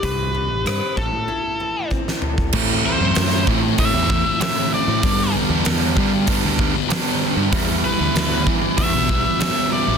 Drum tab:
CC |----------------|x---------------|----------------|----------------|
HH |o---o-----------|----o---o---o---|o---o---o---o---|o---o---o---o---|
SD |----r--------o--|----o-------o---|----o-------o---|----o-------o---|
T2 |--------------o-|----------------|----------------|----------------|
BD |o-----o-----o--o|o-----o-o-o-----|o-----o-o-o-----|o-----o-o-o-----|